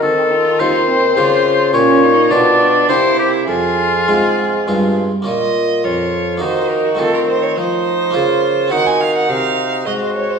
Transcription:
<<
  \new Staff \with { instrumentName = "Violin" } { \time 3/4 \key bes \minor \tempo 4 = 104 c'8 f'8 ees'8 c'8 f'4 | \key f \minor des'8 ees'8 d'4 e'4 | aes'2~ aes'8 r8 | \key bes \minor ees''4 des''4 c''8 bes'16 ges'16 |
a'16 bes'16 c''16 des''16 c''2 | ges''16 aes''16 f''16 ges''16 f''4 ees''16 c''16 des''16 c''16 | }
  \new Staff \with { instrumentName = "Oboe" } { \time 3/4 \key bes \minor a'4 c''2 | \key f \minor des''4 d''4 c''8 g'8 | f'2~ f'8 r8 | \key bes \minor r4 f'4 ees'4 |
c'4 ees'4 f'8 f'8 | ees'2 ges'4 | }
  \new Staff \with { instrumentName = "Harpsichord" } { \time 3/4 \key bes \minor r4 <c' f'>4 <bes f'>4 | \key f \minor <f' g'>4 <f' g'>4 <bes e' g'>4 | r4 <aes c' f'>4 <aes c' f'>4 | \key bes \minor <bes des' f'>2 <bes ees' ges'>4 |
<a c' f'>2 <bes des' f'>4 | <c' ges'>2. | }
  \new Staff \with { instrumentName = "Harpsichord" } { \clef bass \time 3/4 \key bes \minor ees4 ees,4 des4 | \key f \minor bes,4 b,4 c4 | f,4 aes,4 g,4 | \key bes \minor bes,4 f,4 ees4 |
ees4 f4 des4 | ees4 c4 aes,4 | }
  \new Staff \with { instrumentName = "Bassoon" } { \clef bass \time 3/4 \key bes \minor ees4 ees,4 des4 | \key f \minor bes,4 b,4 c4 | f,4 aes,4 g,4 | \key bes \minor bes,4 f,4 ees4 |
ees4 f4 des4 | ees4 c4 aes,4 | }
>>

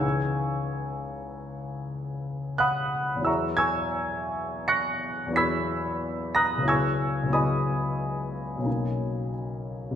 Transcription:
<<
  \new Staff \with { instrumentName = "Grand piano" } { \time 5/4 \key cis \dorian \tempo 4 = 91 <gis'' cis''' e''' gis'''>1 <fis'' b'' dis''' fis'''>4 | <e'' ais'' cis''' e'''>8 <gis'' cis''' e''' gis'''>4. <cis''' fis''' ais''' cis''''>4 <b'' e''' gis''' b'''>4. <ais'' dis''' fis''' ais'''>8 | <gis'' cis''' e''' gis'''>4 <dis'' gis'' b'' dis'''>2. r4 | }
  \new Staff \with { instrumentName = "Grand piano" } { \time 5/4 \key cis \dorian <cis, e cis' dis' gis'>1~ <cis, e cis' dis' gis'>4 | <e, fis b e' gis'>2. <e, fis b e' gis'>2 | <cis, fis b e' gis'>4 <cis, fis b e' gis'>2 <b,, fis ais cis' dis'>2 | }
>>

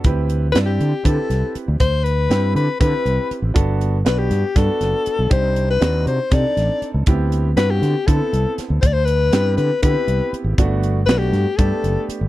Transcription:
<<
  \new Staff \with { instrumentName = "Soprano saxophone" } { \time 7/8 \key d \mixolydian \tempo 4 = 120 r4 b'16 g'8. a'4 r8 | c''8 b'4 b'8 b'4~ b'32 r16. | r4 b'16 g'8. a'4. | c''8. b'8. c''8 d''4~ d''32 r16. |
r4 b'16 g'8. a'4 r8 | c''32 d''32 c''16 b'4 b'8 b'4~ b'32 r16. | r4 b'16 g'8. a'4 r8 | }
  \new Staff \with { instrumentName = "Grand piano" } { \time 7/8 \key d \mixolydian <c' e' g' b'>4 <c' e' g' d''>8 r8 <c' e' g' b'>4. | r4 <c' e' g' b'>8 r8 <c' e' g' b'>4. | <b d' fis' a'>4 <b d' fis' b'>8 r8 <b d' fis' a'>4. | <c' d' ees' g'>4 <c' d' ees' fis'>8 r8 <c' d' ees' a'>4. |
<b c' e' g'>4 <b c' e' fis'>8 r8 <b c' e' a'>4. | r4 <b c' e' g'>8 r8 <b c' e' g'>4. | <a b d' fis'>4 <a b d' fis'>8 r8 <a b d' g'>4. | }
  \new Staff \with { instrumentName = "Fretless electric bass" } { \clef bass \time 7/8 \key d \mixolydian d,4 g,8 d16 r16 d16 r16 c,16 r8 d,16 | d,4 g,8 d16 r16 d16 r16 c,16 r8 a,,16 | g,,4 b,,8 g,16 r16 g,16 r16 fis,,16 r8 b,,16 | c,4 ees,8 c16 r16 c16 r16 a,,16 r8 cis,16 |
d,4 g,8 d16 r16 d16 r16 c,16 r8 d,16 | d,4 g,8 d16 r16 d16 r16 c,16 r8 aes,,16 | g,,4 b,,8 g,16 r16 g,16 r16 fis,,16 r8 g,,16 | }
  \new DrumStaff \with { instrumentName = "Drums" } \drummode { \time 7/8 <hh bd>8 hh8 <hh sn>8 hh8 <hh bd>8 <hh sn>8 hh8 | <hh bd>8 hh8 <hh sn>8 hh8 <hh bd>8 hh8 hh8 | <hh bd>8 hh8 <hh sn>8 <hh sn>8 <hh bd sn>8 <hh sn>8 hh8 | <hh bd>8 hh8 <hh sn>8 hh8 <hh bd sn>8 <hh sn>8 hh8 |
<hh bd>8 hh8 <hh sn>8 <hh sn>8 <hh bd>8 hh8 <hh sn>8 | <hh bd>8 hh8 <hh sn>8 hh8 <hh bd>8 hh8 hh8 | <hh bd>8 hh8 <hh sn>8 <hh sn>8 <hh bd>8 hh8 hh8 | }
>>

